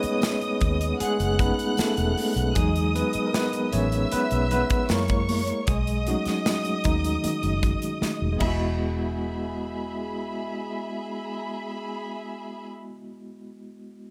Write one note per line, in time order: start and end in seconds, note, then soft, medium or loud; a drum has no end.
0.00 1.02 G#3 medium
0.00 1.39 A3 medium
0.00 0.97 B3 medium
0.00 1.39 C#4 soft
0.00 1.40 D#4 medium
0.00 1.01 G#4 loud
0.00 1.04 B4 medium
0.00 2.58 C#5 medium
0.00 0.96 D#5 medium
0.00 0.97 D#6 medium
0.00 muted fingered electric bass stroke soft
0.00 closed hi-hat medium
0.21 snare loud
0.21 closed hi-hat medium
0.21 tambourine medium
0.21 high conga medium
0.41 closed hi-hat soft
0.61 0.92 D#2 loud
0.61 kick medium
0.61 closed hi-hat medium
0.61 muted conga soft
0.81 closed hi-hat medium
1.00 1.37 G#3 medium
1.00 1.40 G#4 loud
1.00 2.53 F#5 medium
1.00 2.53 F#6 medium
1.00 muted fingered electric bass stroke soft
1.00 closed hi-hat medium
1.00 muted conga medium
1.20 1.50 F#1 medium
1.20 closed hi-hat medium
1.39 1.74 A3 medium
1.39 1.76 B3 medium
1.39 1.74 C#4 soft
1.39 1.75 D#4 medium
1.39 1.79 B4 medium
1.39 kick loud
1.39 closed hi-hat medium
1.59 closed hi-hat medium
1.77 2.53 A3 medium
1.77 2.58 A4 loud
1.77 muted fingered electric bass stroke soft
1.77 snare loud
1.77 closed hi-hat medium
1.77 tambourine medium
1.77 high conga medium
1.97 2.13 E1 medium
1.97 closed hi-hat soft
2.17 open hi-hat medium
2.17 high conga medium
2.36 2.51 B1 medium
2.36 closed hi-hat medium
2.55 3.02 E2 medium
2.55 3.07 F#3 medium
2.55 2.92 G#3 medium
2.55 3.08 D#4 medium
2.55 2.96 G#4 medium
2.55 3.71 D#5 medium
2.55 3.71 D#6 medium
2.55 kick loud
2.55 closed hi-hat loud
2.76 closed hi-hat soft
2.95 3.26 B3 medium
2.95 3.28 B4 medium
2.95 closed hi-hat medium
2.95 muted conga soft
3.13 muted fingered electric bass stroke soft
3.13 closed hi-hat medium
3.27 3.34 A#4 medium
3.33 3.71 B3 medium
3.33 3.74 B4 medium
3.33 snare loud
3.33 closed hi-hat medium
3.33 high conga medium
3.53 closed hi-hat soft
3.73 4.04 A1 medium
3.73 4.10 C#4 medium
3.73 4.13 C#5 medium
3.73 4.88 E5 medium
3.73 4.88 E6 medium
3.73 closed hi-hat medium
3.73 muted conga soft
3.73 low conga medium
3.92 closed hi-hat soft
4.12 4.49 B3 medium
4.12 4.48 B4 loud
4.12 muted fingered electric bass stroke soft
4.12 closed hi-hat medium
4.12 muted conga soft
4.31 4.62 B1 medium
4.31 closed hi-hat soft
4.51 4.88 B3 medium
4.51 4.91 B4 medium
4.51 closed hi-hat medium
4.51 low conga medium
4.70 kick loud
4.70 closed hi-hat medium
4.89 5.51 F#2 medium
4.89 5.64 G#3 medium
4.89 5.65 A#3 medium
4.89 5.65 E4 medium
4.89 5.71 A#4 medium
4.89 5.67 C#5 medium
4.89 5.67 C#6 medium
4.89 snare medium
4.89 closed hi-hat medium
4.89 high conga medium
5.08 kick medium
5.08 closed hi-hat soft
5.29 open hi-hat medium
5.29 high conga medium
5.47 closed hi-hat medium
5.67 6.14 B1 medium
5.67 6.05 G#3 medium
5.67 6.08 G#4 medium
5.67 8.37 D#5 medium
5.67 8.37 D#6 medium
5.67 kick loud
5.67 closed hi-hat medium
5.87 closed hi-hat soft
6.07 6.82 F#3 medium
6.07 7.20 A3 medium
6.07 7.20 C#4 medium
6.07 6.83 D#4 medium
6.07 6.88 F#4 medium
6.07 closed hi-hat medium
6.07 muted conga soft
6.26 muted fingered electric bass stroke soft
6.26 snare soft
6.26 closed hi-hat medium
6.46 snare loud
6.46 closed hi-hat medium
6.46 high conga soft
6.65 closed hi-hat soft
6.84 7.16 D#2 medium
6.84 7.98 D#3 medium
6.84 7.98 D#4 medium
6.84 kick medium
6.84 closed hi-hat medium
7.04 closed hi-hat medium
7.24 muted fingered electric bass stroke soft
7.24 closed hi-hat medium
7.24 muted conga soft
7.43 7.74 F#1 medium
7.43 closed hi-hat soft
7.63 kick medium
7.63 closed hi-hat medium
7.82 closed hi-hat medium
8.02 muted fingered electric bass stroke soft
8.02 snare medium
8.02 high conga medium
8.22 8.37 E1 medium
8.32 12.87 G#3 medium
8.32 12.91 B3 medium
8.40 12.95 E1 medium
8.40 12.98 E4 medium
8.40 12.68 G#4 medium
8.40 12.94 D#5 medium
8.40 12.68 E5 medium
8.40 12.68 B5 medium
8.40 kick loud
8.40 crash medium
8.40 muted conga medium
8.47 13.02 F#4 medium